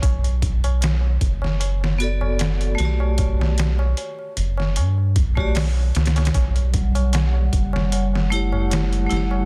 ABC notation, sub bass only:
X:1
M:4/4
L:1/8
Q:"Swing 16ths" 1/4=76
K:Glyd
V:1 name="Sub bass" clef=bass
B,,,3 F,,,4 B,,,- | B,,,2 z F,,, G,, B,,,2 C,, | B,,,3 F,,,4 F,,, |]